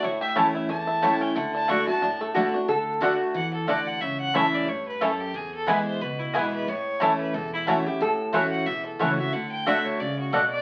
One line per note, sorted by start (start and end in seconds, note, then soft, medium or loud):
0.00 0.47 A1 loud
0.00 0.67 A2 medium
0.00 0.24 A3 medium
0.00 0.51 E4 medium
0.04 0.21 C#5 medium
0.21 0.66 G4 medium
0.21 0.30 E5 loud
0.35 0.68 E3 medium
0.35 0.46 A3 medium
0.35 0.68 A3 medium
0.35 0.84 C#4 medium
0.35 0.68 C#4 medium
0.35 0.46 E4 loud
0.35 0.68 E4 medium
0.35 0.46 C#5 loud
0.35 0.46 A5 loud
0.55 0.86 E4 medium
0.69 1.33 E2 medium
0.69 1.13 E2 medium
0.69 1.35 A3 medium
0.69 1.23 A5 medium
0.87 1.33 E4 medium
1.02 1.34 E3 medium
1.02 1.12 A3 medium
1.02 1.35 A3 medium
1.02 1.35 C#4 loud
1.02 1.13 E4 medium
1.02 1.35 E4 loud
1.02 1.36 G4 medium
1.02 1.13 C#5 loud
1.02 1.13 A5 medium
1.21 1.36 C#4 medium
1.21 1.37 G5 medium
1.35 1.80 D2 medium
1.35 1.68 D3 medium
1.35 1.84 A3 medium
1.35 1.54 F#5 medium
1.54 1.68 D4 medium
1.54 1.70 A5 loud
1.68 1.87 D3 medium
1.68 1.79 A3 medium
1.68 1.88 A3 medium
1.68 2.01 D4 medium
1.68 1.88 D4 medium
1.68 1.79 F#4 medium
1.68 1.86 F#4 medium
1.68 1.79 D5 medium
1.68 1.79 F#5 loud
1.68 1.86 C#6 loud
1.87 2.20 A3 medium
1.87 2.02 D4 medium
1.87 2.02 F#4 medium
1.87 2.18 A5 loud
2.02 2.46 A1 medium
2.02 2.66 A2 medium
2.02 2.34 D4 medium
2.21 2.66 A3 medium
2.21 2.36 A4 medium
2.34 2.53 D3 medium
2.34 2.45 A3 medium
2.34 2.54 A3 medium
2.34 2.53 D4 medium
2.34 2.54 D4 medium
2.34 2.66 F#4 loud
2.34 2.45 F#4 medium
2.34 2.53 F#4 medium
2.34 2.46 D5 medium
2.34 2.46 F#5 medium
2.54 2.69 D4 medium
2.54 2.69 D4 soft
2.54 2.68 F#4 soft
2.68 3.12 D2 medium
2.68 2.99 D3 medium
2.68 3.03 A4 loud
3.00 3.33 D3 medium
3.00 3.33 A3 medium
3.00 3.12 A3 medium
3.00 3.11 A3 medium
3.00 3.33 D4 medium
3.00 3.05 D4 medium
3.00 3.34 F#4 medium
3.00 3.12 F#4 loud
3.00 3.27 F#4 medium
3.00 3.12 D5 loud
3.00 3.12 F#5 loud
3.34 3.63 E2 medium
3.34 3.67 E3 medium
3.34 3.53 F#5 medium
3.54 3.70 A4 medium
3.67 3.96 D2 medium
3.67 4.00 D3 medium
3.67 3.78 A3 medium
3.67 3.77 A3 medium
3.67 3.71 D4 medium
3.67 3.78 F#4 medium
3.67 3.78 D5 loud
3.67 3.88 D5 medium
3.67 3.79 F#5 loud
3.87 4.02 F#5 loud
4.00 4.45 C#2 medium
4.00 4.65 C#3 medium
4.00 4.20 E5 medium
4.20 4.37 F#5 loud
4.34 4.66 E3 medium
4.34 4.45 A3 loud
4.34 4.67 A3 medium
4.34 4.44 A3 medium
4.34 4.67 C#4 loud
4.34 4.44 C#4 medium
4.34 4.45 E4 medium
4.34 4.67 E4 medium
4.34 4.44 E4 medium
4.34 4.45 C#5 loud
4.34 4.56 E5 loud
4.34 4.45 A5 loud
4.54 4.70 D5 loud
4.67 5.00 G2 medium
4.67 5.12 A2 medium
4.67 4.87 C#5 medium
4.88 5.04 B4 medium
5.01 5.33 F#2 loud
5.01 5.11 A3 medium
5.01 5.10 A3 medium
5.01 5.10 C#4 medium
5.01 5.11 E4 medium
5.01 5.10 E4 medium
5.01 5.22 A4 medium
5.01 5.12 C#5 loud
5.01 5.12 A5 medium
5.21 5.37 G4 medium
5.34 5.98 E2 medium
5.34 5.79 E2 medium
5.34 5.54 G#4 medium
5.54 5.71 A4 medium
5.67 5.99 E3 medium
5.67 5.99 G#3 loud
5.67 5.76 G#3 medium
5.67 5.78 B3 medium
5.67 6.00 B3 medium
5.67 5.77 B3 medium
5.67 5.78 E4 loud
5.67 6.00 E4 medium
5.67 5.77 E4 medium
5.67 5.78 B4 medium
5.67 5.85 B4 medium
5.67 5.78 G#5 loud
5.86 6.03 C5 loud
6.00 6.29 C#2 medium
6.00 6.65 B2 medium
6.00 6.20 B4 medium
6.19 6.37 E4 medium
6.33 6.63 B1 medium
6.33 6.66 E3 medium
6.33 6.66 G#3 medium
6.33 6.43 G#3 medium
6.33 6.44 B3 medium
6.33 6.43 B3 medium
6.33 6.67 B3 medium
6.33 6.44 E4 medium
6.33 6.67 E4 medium
6.33 6.43 E4 medium
6.33 6.53 G#4 medium
6.33 6.44 B4 medium
6.33 6.45 G#5 medium
6.53 6.70 B4 medium
6.68 7.11 A1 medium
6.68 7.31 A2 medium
6.68 7.19 C#5 medium
7.00 7.33 E3 medium
7.00 7.11 A3 loud
7.00 7.10 A3 medium
7.00 7.33 A3 medium
7.00 7.10 C#4 medium
7.00 7.33 C#4 medium
7.00 7.11 E4 medium
7.00 7.33 E4 medium
7.00 7.10 E4 medium
7.00 7.11 C#5 medium
7.00 7.11 A5 loud
7.20 7.36 B4 medium
7.34 7.78 E1 medium
7.34 7.98 E2 medium
7.34 7.53 A4 medium
7.53 7.62 E4 medium
7.66 7.85 E3 medium
7.66 7.77 A3 medium
7.66 7.85 A3 medium
7.66 7.76 A3 medium
7.66 7.85 C#4 medium
7.66 7.76 C#4 medium
7.66 7.77 E4 medium
7.66 7.85 E4 medium
7.66 7.76 E4 medium
7.66 7.85 F#4 medium
7.66 7.78 C#5 medium
7.66 7.78 A5 medium
7.86 8.01 C#4 soft
7.86 8.00 E4 medium
7.86 8.01 G4 medium
8.00 8.22 A1 medium
8.00 8.64 A2 medium
8.00 8.41 A4 loud
8.33 8.62 A1 medium
8.33 8.65 E3 medium
8.33 8.43 A3 loud
8.33 8.65 A3 medium
8.33 8.42 A3 medium
8.33 8.66 C#4 medium
8.33 8.42 C#4 medium
8.33 8.44 E4 loud
8.33 8.43 E4 medium
8.33 8.66 F#4 medium
8.33 8.44 C#5 loud
8.33 8.44 F#5 loud
8.51 8.68 F#5 medium
8.66 8.95 B1 medium
8.66 9.30 E2 medium
8.66 8.85 E5 medium
8.86 9.02 A4 medium
8.99 9.28 C#2 medium
8.99 9.18 E3 medium
8.99 9.10 A3 medium
8.99 9.18 A3 medium
8.99 9.09 A3 medium
8.99 9.18 C#4 medium
8.99 9.09 C#4 medium
8.99 9.10 E4 medium
8.99 9.09 E4 medium
8.99 9.17 F#4 medium
8.99 9.10 C#5 medium
8.99 9.18 C#5 medium
8.99 9.10 F#5 loud
9.18 9.34 C#4 soft
9.18 9.33 F#4 medium
9.18 9.34 E5 medium
9.33 9.77 D2 medium
9.33 9.65 D3 medium
9.33 9.51 F#5 medium
9.51 9.69 G5 loud
9.66 9.98 D3 medium
9.66 9.77 A3 medium
9.66 9.99 A3 medium
9.66 9.75 A3 medium
9.66 9.99 D4 loud
9.66 9.70 D4 medium
9.66 9.77 F#4 medium
9.66 9.99 F#4 medium
9.66 9.77 D5 loud
9.66 9.86 E5 medium
9.66 9.77 F#5 loud
9.85 10.01 C#5 medium
10.00 10.28 C#2 medium
10.00 10.32 C#3 medium
10.00 10.19 D5 loud
10.19 10.34 F#4 medium
10.33 10.62 B1 medium
10.33 10.62 B2 medium
10.33 10.43 A3 medium
10.33 10.42 A3 medium
10.33 10.37 D4 medium
10.33 10.43 F#4 medium
10.33 10.50 A4 medium
10.33 10.44 D5 medium
10.33 10.44 F#5 medium
10.50 10.62 D5 loud